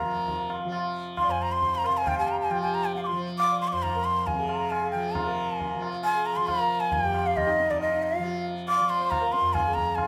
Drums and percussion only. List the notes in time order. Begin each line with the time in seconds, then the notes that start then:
0.28 tabla tin, tabla ge
0.50 tabla na
0.72 tabla na
1.17 tabla na, tabla ge
1.62 tabla tin, tabla ge
1.84 tabla na
2.07 tabla na, tabla ge
2.51 tabla na
2.95 tabla tin
3.40 tabla na
3.84 tabla na, tabla ge
4.27 tabla tin, tabla ge
4.49 tabla na
4.72 tabla na
5.15 tabla na, tabla ge
5.60 tabla tin, tabla ge
5.82 tabla na
6.03 tabla na
6.48 tabla na, tabla ge
6.92 tabla tin, tabla ge
7.14 tabla na
7.37 tabla na, tabla ge
7.60 tabla te
7.70 tabla ge
7.81 tabla na
8.24 tabla tin
8.68 tabla na
9.12 tabla na, tabla ge
9.34 tabla te
9.55 tabla na, tabla ge
9.77 tabla ge
9.98 tabla na, tabla ge